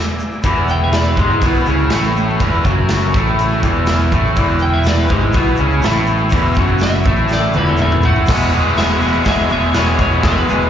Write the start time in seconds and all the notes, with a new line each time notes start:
Already playing: E4 G#4 D5
0.08 shaker
0.19 shaker
0.32 shaker
0.42 E1 E2 E3 E4 G#4 B4, kick, crash, shaker
0.56 shaker
0.68 G5, shaker
0.84 E5
0.93 D5, snare, crash, shaker
1.06 B4, shaker
1.17 G#1 G#2 G#3 G4, kick, shaker
1.29 E4, shaker
1.40 B1 B2 E4, kick, crash, shaker
1.45 B3
1.55 shaker
1.66 C#2 C#3 C#4, shaker
1.79 shaker
1.90 A1 A2 A3, snare, crash, shaker
2.05 shaker
2.17 shaker
2.29 shaker
2.40 E1 E2 E3, kick, crash, shaker
2.53 shaker
2.64 F#1 F#2 F#3, kick, shaker
2.89 snare, crash, shaker
3.02 shaker
3.14 A1 A2 A3, kick, shaker
3.27 shaker
3.39 crash, shaker
3.51 shaker
3.63 E1 E2 E3, kick, shaker
3.75 shaker
3.87 snare, crash, shaker
4.00 shaker
4.12 A1 A2 A3, kick, shaker
4.25 shaker
4.35 E1 E2 E3 E4 B4 G#5, kick, crash, shaker
4.48 shaker
4.59 G5, shaker
4.73 E5
4.84 D5, snare, crash, shaker
4.96 shaker
5.00 B4
5.08 G#1 G#2 G#3 G4, kick, shaker
5.20 E4, shaker
5.33 B1 B2 B3 E4, kick, crash, shaker
5.45 shaker
5.56 C#2 C#3 C#4, shaker
5.71 shaker
5.82 A1 A2 A3, snare, crash, shaker
5.95 shaker
6.06 shaker
6.17 shaker
6.30 E1 E2 E3, kick, crash, shaker
6.42 shaker
6.54 F#1 F#2, kick, shaker
6.59 F#3
6.67 shaker
6.79 snare, crash, shaker
6.83 E5
6.91 shaker
7.03 A1 A2, kick, shaker
7.07 A3
7.16 shaker
7.28 snare, shaker
7.33 D5
7.41 shaker
7.53 E1 E2 E3 B4, high tom, shaker
7.58 B4
7.66 A4, shaker
7.77 mid tom, shaker
7.82 E5
7.90 mid tom, shaker
8.02 A1 A2 A3 F#5, floor tom, shaker
8.15 floor tom, shaker
8.26 E1 E2 B2 E3 G#3 E4 G#4 B4, kick, snare, crash, shaker
8.30 B3 G#4
8.39 shaker
8.52 E2 B2 E3 G#3 B3 G#4, shaker
8.64 shaker
8.76 E1 E2 B2 E3 G#3 B3 G#4 E5, snare, open hi-hat, shaker
8.88 shaker
9.00 E1 E2 B2 E3 G#3 B3 G#4, shaker
9.25 E1 E2 B2 E3 G#3 B3 G#4, kick, snare, open hi-hat, shaker
9.29 E5
9.38 shaker
9.49 E1 E2 B2 E3 G#3 B3 G#4 E5, shaker
9.62 shaker
9.73 E1 E2 B2 E3 G#3 B3 G#4, snare, open hi-hat, shaker
9.77 C#5
9.97 E1 E2 B2 E3 G#3 B3 G#4 C#5, kick, shaker
10.12 shaker
10.22 E1 E2 B2 E3 G#3 B3 G#4, kick, snare, open hi-hat, shaker
10.28 B4
10.37 shaker
10.47 E1 E2 B2 E3 G#3 B3 G#4, shaker
10.61 shaker